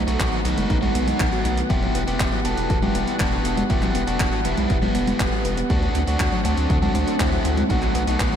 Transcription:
Already playing: D#3 F#3 A3 B3 F#5
0.07 B1 B3 D#4 F#4, closed hi-hat
0.20 B1 D#3, kick, clap, closed hi-hat
0.33 F#3, closed hi-hat
0.45 B1 B3 D#4 B4, closed hi-hat
0.57 F#1 B3, closed hi-hat, high conga
0.70 B1 D#3, kick, closed hi-hat
0.82 F#3 D#4 F#4, closed hi-hat, high conga
0.95 B1 B3, closed hi-hat
1.08 B3, closed hi-hat, high conga
1.20 B1 D#3, kick, clap, closed hi-hat
1.33 F#3, closed hi-hat
1.45 B1 B3, closed hi-hat
1.57 B3, closed hi-hat
1.70 E1 E3 G3 E4 G4, kick, closed hi-hat
1.82 F#3, closed hi-hat
1.95 E1 B3, closed hi-hat
2.07 E1 B3 E4 G4, closed hi-hat
2.20 E1 E3, kick, clap, closed hi-hat
2.32 F#3, closed hi-hat
2.45 E1 B3 F#4 A4, closed hi-hat
2.57 E1 B3, closed hi-hat
2.70 E1 E3, kick, closed hi-hat
2.82 F#3 E4 G4, closed hi-hat, high conga
2.95 E1 B3, closed hi-hat
3.07 B3, closed hi-hat
3.20 E1 E3 D4 F#4, kick, clap, closed hi-hat
3.32 F#3, closed hi-hat
3.45 E1 B3, closed hi-hat
3.57 B3, closed hi-hat, high conga
3.70 E1 E3 E4 G4, kick, closed hi-hat
3.82 F#3, clap, closed hi-hat
3.95 E1 B3, closed hi-hat
4.07 E1 B3 D4 F#4, closed hi-hat
4.20 E1 E3, kick, clap, closed hi-hat
4.32 F#3, closed hi-hat
4.45 E1 G3 B3 E4, closed hi-hat
4.57 B1 B3, closed hi-hat, high conga
4.70 E1 E3, kick, closed hi-hat
4.82 F#3 G3 B3, closed hi-hat, high conga
4.95 E1 B3, closed hi-hat
5.07 B3, closed hi-hat, high conga
5.20 E1 E3, kick, clap, closed hi-hat
5.32 F#3, closed hi-hat
5.45 E1 B3, closed hi-hat
5.57 B3, closed hi-hat
5.70 D2 D3 F#3 A3 C4 D4 F#4 F#5, kick, closed hi-hat
5.82 F#3, closed hi-hat
5.95 D2 C4, closed hi-hat
6.07 D2 C4 D4 F#4, closed hi-hat
6.20 D2 D3, kick, clap, closed hi-hat
6.32 F#3, closed hi-hat
6.45 D2 C4 D4 F#4, closed hi-hat
6.57 D2 C4, closed hi-hat
6.70 D2 D3, kick, closed hi-hat
6.82 F#3 D4 F#4, closed hi-hat, high conga
6.95 D2 C4, closed hi-hat
7.07 C4, closed hi-hat
7.20 D2 D3 C4 E4, kick, clap, closed hi-hat
7.32 F#3, closed hi-hat
7.45 D2 C4, closed hi-hat
7.57 C4, closed hi-hat, high conga
7.70 B1 D#3 F#3 B3 D#4 F#4, kick, closed hi-hat
7.82 F#3, clap, closed hi-hat
7.95 B1 B3, closed hi-hat
8.07 B1 B3 D#4 F#4, closed hi-hat
8.20 B1 D#3, kick, clap, closed hi-hat
8.32 F#3, closed hi-hat

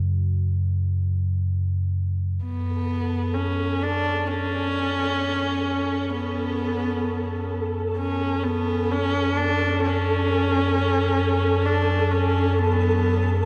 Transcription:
Already playing: F#2 C#3
2.41 F#2 B3 A4
3.34 C#4
3.83 D4
4.27 C#4
6.13 B3
7.98 C#4
8.44 B3
8.92 C#4
9.37 D4
9.82 C#4
11.65 D4
12.11 C#4
12.58 B3

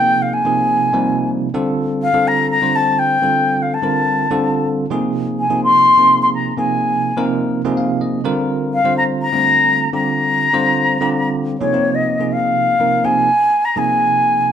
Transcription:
Already playing: C3 F3 A#3 D#4 G#4 G5
0.22 F5
0.33 G#5
0.45 C3 F3 A#3 D#4 G#4
0.93 C3 F3 G3 A#3 D#4
1.54 D3 G3 C4 F4 A4
2.02 F5
2.13 D3 G3 C4 F4 A4
2.28 A#5
2.50 A#5
2.62 D3 G3 C4 F4 C5
2.76 A5
2.99 G5
3.22 D3 G3 C4 F4 A4
3.62 F5
3.74 A5
3.82 D3 G3 C4 F4 A#4
4.30 D3 G3 C4 F4 A4
4.90 C3 F3 A#3 D#4 G#4
5.40 G#5
5.50 C3 F3 A#3 D#4 G#4
5.64 C6
5.97 C3 F3 A#3 D#4 G#4
6.22 C6
6.34 A#5
6.57 C3 F3 A#3 D#4 G#4 G#5
7.17 C3 F3 A#3 D#4 A#4
7.64 C3 F3 A#3 D#4 G#4
7.77 F5
8.01 D#5
8.24 D3 G3 C4 F4 A#4
8.74 F5
8.84 D3 G3 C4 F4 C5
8.98 A#5
9.22 A#5
9.32 D3 G3 A3 C4 F4
9.93 D3 G3 C4 F4 G4 A#5
10.53 D3 G3 C4 F4 C5
11.01 D3 G3 C4 F4 G4
11.59 C3 F3 A#3 D#4 G#4 C#5
11.73 C3 F3 A#3 D#4 G4
11.95 D#5
12.20 C3 F3 A#3 D#4 G#4
12.32 F5
12.80 C3 F3 A#3 D#4 A#4
13.04 C3 F3 A#3 D#4 G#4 G#5
13.65 A#5
13.76 C3 F3 A#3 D#4 G#4 G#5

